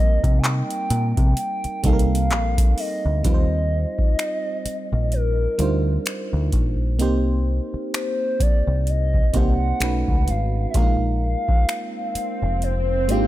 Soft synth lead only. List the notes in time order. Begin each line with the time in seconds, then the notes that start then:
Already playing: D#5
0.39 G#5
0.45 G5
1.39 G5
1.86 F5
2.80 D#5
5.13 A#4
7.95 C5
8.42 D5
8.89 D#5
9.36 F#5
10.30 F5
10.70 E5
10.76 F5
12.63 C5
13.10 F5